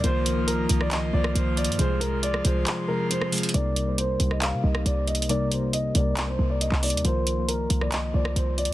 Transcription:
Already playing: pipe organ A#3
0.03 808-style bass C2, synth keys D#3 F3 A#3 F4 A#4, pipe organ D#3 F3 F4, grand piano C5, closed hi-hat
0.26 closed hi-hat
0.37 synth keys D#3 F3 A#3 F4 A#4
0.47 grand piano A#4, closed hi-hat
0.69 808-style bass C2, synth keys D#3 F3 A#3 F4 A#4, closed hi-hat
0.81 grand piano D5, cross-stick
0.91 grand piano D#5, clap, closed hi-hat
1.13 808-style bass C2, synth keys D#3 F3 A#3 F4 C5, grand piano D5
1.24 cross-stick
1.35 808-style bass C2, grand piano C5, closed hi-hat
1.57 grand piano D5, closed hi-hat
1.65 808-style bass G2, closed hi-hat
1.72 closed hi-hat
1.79 808-style bass C2, synth keys C3 F3 G#3 F4 G#4, pipe organ C3 G#3, grand piano C5, closed hi-hat
2.01 grand piano A#4, closed hi-hat
2.11 synth keys C3 F3 G#3 F4 G#4
2.23 grand piano D5, closed hi-hat
2.34 cross-stick
2.44 808-style bass C2, synth keys C3 F3 G#3 F4 G#4, grand piano C5, closed hi-hat
2.67 clap, closed hi-hat
2.88 synth keys C3 F3 G#3 F4 G#4, grand piano A#4
3.10 grand piano C5, closed hi-hat
3.22 cross-stick
3.31 synth keys C3 F3 G#3 F4 G#4, closed hi-hat, open hi-hat
3.38 closed hi-hat
3.43 closed hi-hat
3.49 closed hi-hat
3.54 808-style bass C2, synth keys C3 G3 A#3 D#4 A#4, grand piano D5, closed hi-hat
3.76 closed hi-hat
3.86 synth keys C3 G3 A#3 D#4 C5
3.98 grand piano C5, closed hi-hat
4.19 808-style bass C2, synth keys C3 G3 A#3 D#4 G4, closed hi-hat
4.31 grand piano D#5, cross-stick
4.41 grand piano F5, clap, closed hi-hat
4.53 808-style bass C3
4.63 808-style bass C2, synth keys C3 G3 A#3 D#4 A#4, grand piano D#5
4.75 cross-stick
4.86 808-style bass C2, grand piano D5, closed hi-hat
5.07 grand piano D#5, closed hi-hat
5.15 closed hi-hat
5.22 closed hi-hat
5.28 synth keys C3 G3 A#3 D#4 A#4, grand piano D5, closed hi-hat
5.51 grand piano C5, closed hi-hat
5.61 synth keys C3 G3 A#3 D#4 A#4
5.73 grand piano D#5, closed hi-hat
5.95 808-style bass C2, synth keys C3 G3 A#3 D#4 A#4, grand piano D5, closed hi-hat
6.17 clap, closed hi-hat
6.28 grand piano C5
6.38 808-style bass C2, synth keys C3 G3 A#3 D#4 A#4
6.50 grand piano D5
6.61 grand piano D#5, closed hi-hat
6.72 808-style bass C2, clap
6.82 synth keys C3 G3 A#3 D#4 A#4, grand piano D5, closed hi-hat, open hi-hat
6.90 808-style bass D#2, closed hi-hat
6.97 closed hi-hat
7.04 808-style bass C2, synth keys D#3 F3 A#3 F4 A#4, grand piano C5, closed hi-hat
7.27 closed hi-hat
7.37 synth keys D#3 F3 A#3 F4 A#4
7.48 grand piano A#4, closed hi-hat
7.69 808-style bass C2, synth keys D#3 F3 A#3 F4 A#4, closed hi-hat
7.81 grand piano D5, cross-stick
7.92 clap, closed hi-hat
8.13 808-style bass C2, synth keys D#3 F3 A#3 F4 C5, grand piano D5
8.25 cross-stick
8.36 808-style bass C2, grand piano C5, closed hi-hat
8.58 grand piano D5, closed hi-hat
8.65 808-style bass G2, closed hi-hat

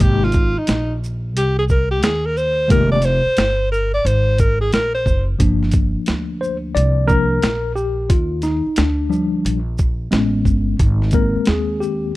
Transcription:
0.00 upright bass G#1, tine electric piano C3 G#3 A#3 G4, alto saxophone G4, kick, closed hi-hat
0.23 alto saxophone F4, snare
0.32 kick, closed hi-hat, shaker
0.55 alto saxophone D#4, muted upright bass stroke
0.67 upright bass A#1, snare, closed hi-hat
1.04 shaker
1.35 upright bass C2, alto saxophone G4, closed hi-hat
1.58 alto saxophone G#4
1.69 alto saxophone A#4, kick, shaker
1.91 alto saxophone G4
2.03 upright bass D#2, alto saxophone G#4, snare, closed hi-hat
2.26 alto saxophone A#4
2.37 alto saxophone C5, shaker
2.68 upright bass F1, tine electric piano D#3 G#3 A#3 G4, alto saxophone A#4, kick, closed hi-hat
2.91 alto saxophone D5
3.02 alto saxophone C5, snare, closed hi-hat, shaker
3.26 muted upright bass stroke
3.37 upright bass G1, snare, closed hi-hat
3.71 alto saxophone A#4, shaker
3.94 alto saxophone D5
4.05 upright bass G#1, alto saxophone C5, closed hi-hat
4.38 alto saxophone A#4, kick, closed hi-hat, shaker
4.61 alto saxophone G#4
4.73 upright bass A#1, alto saxophone A#4, snare, closed hi-hat
4.94 alto saxophone C5
5.06 upright bass F#1, kick, shaker
5.39 upright bass G1, tine electric piano F3 A#3 D4, kick, closed hi-hat
5.63 snare
5.71 kick, closed hi-hat, shaker
5.95 muted upright bass stroke
6.06 upright bass D2, snare, closed hi-hat
6.41 tine electric piano C5, shaker
6.75 upright bass C2, tine electric piano D5, closed hi-hat
7.06 tine electric piano F3 A#3 D4 A#4, kick, shaker
7.42 upright bass A#1, snare, closed hi-hat
7.76 tine electric piano G4, shaker
8.10 upright bass D#2, tine electric piano F4, kick, closed hi-hat
8.42 tine electric piano D#4, snare, closed hi-hat, shaker
8.66 muted upright bass stroke
8.76 upright bass D2, tine electric piano D4, snare, closed hi-hat
9.10 tine electric piano F3 G3 D4, shaker
9.45 upright bass A#1, closed hi-hat
9.78 kick, shaker
10.11 upright bass A1, tine electric piano G#3 B3 C#4, snare, closed hi-hat
10.45 upright bass G1, kick, shaker
10.79 upright bass G#1, kick, closed hi-hat
11.02 snare
11.11 tine electric piano G#3 A#3 C4 A#4, kick, closed hi-hat, shaker
11.35 muted upright bass stroke
11.45 upright bass D#2, tine electric piano G#4, snare, closed hi-hat
11.80 tine electric piano G4, shaker

